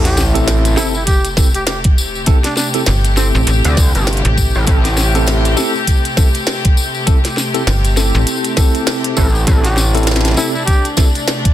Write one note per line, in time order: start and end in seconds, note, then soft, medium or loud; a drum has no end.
0.00 0.75 A1 loud
0.00 11.54 C3 medium
0.00 11.54 A3 medium
0.00 9.47 G4 medium
0.00 sub drop medium
0.05 0.23 G4 medium
0.05 snare soft
0.05 closed hi-hat medium
0.05 tambourine soft
0.17 snare medium
0.17 tambourine medium
0.34 0.74 C4 medium
0.34 0.74 E4 medium
0.34 0.74 G4 medium
0.34 0.74 A4 loud
0.34 closed hi-hat soft
0.34 tambourine soft
0.48 snare loud
0.48 closed hi-hat medium
0.48 tambourine medium
0.65 closed hi-hat medium
0.65 tambourine soft
0.77 0.93 C4 medium
0.77 0.89 E4 medium
0.77 0.93 E4 medium
0.77 0.93 G4 medium
0.77 0.93 A4 loud
0.77 snare medium
0.77 tambourine medium
0.94 1.02 E4 medium
0.94 tambourine soft
1.06 1.29 G4 medium
1.06 kick medium
1.06 closed hi-hat medium
1.06 tambourine medium
1.25 closed hi-hat medium
1.25 tambourine soft
1.37 1.47 C4 medium
1.37 1.47 E4 medium
1.37 1.47 G4 medium
1.37 1.47 A4 medium
1.37 kick loud
1.37 snare medium
1.37 tambourine loud
1.55 1.63 G4 medium
1.55 closed hi-hat soft
1.55 tambourine soft
1.67 1.78 G4 medium
1.67 snare loud
1.67 closed hi-hat medium
1.67 tambourine medium
1.84 kick loud
1.84 closed hi-hat medium
1.98 tambourine loud
2.15 tambourine soft
2.26 2.37 C4 medium
2.26 2.37 E4 medium
2.26 2.37 G4 medium
2.26 2.37 A4 loud
2.26 kick loud
2.26 closed hi-hat medium
2.26 tambourine medium
2.44 2.52 D4 medium
2.44 snare soft
2.44 closed hi-hat medium
2.44 tambourine soft
2.56 2.68 D4 medium
2.56 snare medium
2.56 tambourine loud
2.74 2.82 C4 medium
2.74 2.82 E4 medium
2.74 2.82 G4 medium
2.74 2.82 A4 medium
2.74 closed hi-hat soft
2.74 tambourine soft
2.86 3.32 G1 loud
2.86 snare loud
2.86 closed hi-hat medium
2.86 tambourine medium
3.05 closed hi-hat medium
3.05 tambourine soft
3.17 3.28 C4 medium
3.17 4.64 C4 medium
3.17 4.64 E4 medium
3.17 4.64 G4 medium
3.17 4.64 A4 medium
3.17 snare medium
3.17 tambourine medium
3.34 3.45 A1 loud
3.34 3.43 C4 medium
3.34 tambourine soft
3.47 3.62 A1 medium
3.47 closed hi-hat medium
3.47 tambourine medium
3.65 3.92 D2 loud
3.65 closed hi-hat medium
3.65 tambourine soft
3.77 kick loud
3.77 snare medium
3.77 tambourine loud
3.95 4.22 G1 loud
3.95 closed hi-hat soft
3.95 tambourine soft
4.07 snare loud
4.07 closed hi-hat medium
4.07 tambourine medium
4.13 closed hi-hat medium
4.17 closed hi-hat medium
4.25 4.52 A1 loud
4.25 closed hi-hat medium
4.37 kick medium
4.37 tambourine loud
4.55 4.66 A1 loud
4.55 tambourine soft
4.67 5.56 A1 loud
4.67 4.83 C4 medium
4.67 4.83 E4 medium
4.67 4.83 G4 medium
4.67 4.83 A4 loud
4.67 kick loud
4.67 closed hi-hat medium
4.67 tambourine medium
4.85 snare soft
4.85 closed hi-hat medium
4.85 tambourine soft
4.97 snare medium
4.97 tambourine medium
5.15 5.54 C4 medium
5.15 5.54 E4 medium
5.15 5.54 G4 medium
5.15 5.54 A4 loud
5.15 closed hi-hat soft
5.15 tambourine soft
5.27 snare loud
5.27 closed hi-hat medium
5.27 tambourine medium
5.45 closed hi-hat medium
5.45 tambourine soft
5.57 5.73 C4 loud
5.57 5.73 E4 medium
5.57 5.73 G4 medium
5.57 5.73 A4 loud
5.57 snare medium
5.57 tambourine medium
5.75 tambourine soft
5.87 kick medium
5.87 closed hi-hat medium
5.87 tambourine medium
6.05 closed hi-hat medium
6.05 tambourine soft
6.17 6.27 C4 medium
6.17 6.27 E4 medium
6.17 6.27 G4 medium
6.17 6.27 A4 loud
6.17 kick loud
6.17 snare medium
6.17 tambourine loud
6.34 closed hi-hat soft
6.34 tambourine soft
6.47 snare loud
6.47 closed hi-hat medium
6.47 tambourine medium
6.65 kick loud
6.65 closed hi-hat medium
6.77 tambourine medium
6.95 tambourine soft
7.07 7.17 C4 medium
7.07 7.17 E4 medium
7.07 7.17 G4 medium
7.07 7.17 A4 loud
7.07 kick loud
7.07 closed hi-hat medium
7.07 tambourine medium
7.25 snare soft
7.25 closed hi-hat medium
7.25 tambourine soft
7.37 snare medium
7.37 tambourine medium
7.54 7.62 C4 medium
7.54 7.62 E4 medium
7.54 7.62 G4 medium
7.54 7.61 A4 medium
7.54 closed hi-hat soft
7.54 tambourine soft
7.67 8.12 G1 loud
7.67 snare loud
7.67 closed hi-hat medium
7.67 tambourine medium
7.84 closed hi-hat medium
7.84 tambourine soft
7.97 8.55 C4 medium
7.97 8.54 E4 medium
7.97 8.55 G4 medium
7.97 8.55 A4 medium
7.97 snare medium
7.97 tambourine medium
8.15 8.25 A1 loud
8.15 tambourine soft
8.27 closed hi-hat medium
8.27 tambourine medium
8.45 closed hi-hat medium
8.45 tambourine soft
8.57 9.14 C4 medium
8.57 9.14 E4 medium
8.57 9.14 G4 medium
8.57 9.14 A4 loud
8.57 kick loud
8.57 snare medium
8.57 tambourine loud
8.75 closed hi-hat soft
8.75 tambourine soft
8.87 snare loud
8.87 closed hi-hat medium
8.87 tambourine medium
9.04 closed hi-hat medium
9.17 9.46 A1 loud
9.17 9.27 C4 medium
9.17 9.27 E4 medium
9.17 9.27 G4 medium
9.17 9.27 A4 loud
9.17 kick medium
9.17 tambourine medium
9.35 tambourine soft
9.47 10.36 A1 loud
9.47 9.63 C4 medium
9.47 11.54 D4 medium
9.47 9.63 E4 medium
9.47 9.63 G4 medium
9.47 9.63 A4 loud
9.47 kick loud
9.47 closed hi-hat medium
9.47 tambourine medium
9.65 9.83 G4 medium
9.65 snare soft
9.65 closed hi-hat medium
9.65 tambourine soft
9.77 snare medium
9.77 tambourine medium
9.95 10.34 C4 medium
9.95 10.34 E4 medium
9.95 10.34 G4 medium
9.95 10.34 A4 loud
9.95 closed hi-hat soft
9.95 tambourine soft
9.97 closed hi-hat soft
10.03 snare loud
10.03 closed hi-hat soft
10.07 closed hi-hat medium
10.07 tambourine medium
10.11 snare medium
10.16 snare medium
10.21 snare medium
10.25 snare soft
10.25 closed hi-hat soft
10.25 tambourine soft
10.28 snare soft
10.31 snare soft
10.34 10.53 C4 medium
10.34 10.48 E4 medium
10.34 10.53 E4 medium
10.34 10.53 G4 medium
10.34 10.53 A4 loud
10.34 snare soft
10.34 tambourine medium
10.38 snare medium
10.54 10.62 E4 medium
10.54 tambourine soft
10.65 10.88 G4 loud
10.65 kick medium
10.65 closed hi-hat medium
10.65 tambourine medium
10.85 closed hi-hat soft
10.85 tambourine soft
10.97 11.07 C4 medium
10.97 11.07 E4 medium
10.97 11.07 G4 medium
10.97 11.07 A4 loud
10.97 kick loud
10.97 snare medium
10.97 tambourine medium
11.15 closed hi-hat soft
11.15 tambourine soft
11.28 snare loud
11.28 closed hi-hat medium
11.28 tambourine medium
11.45 kick loud
11.45 closed hi-hat medium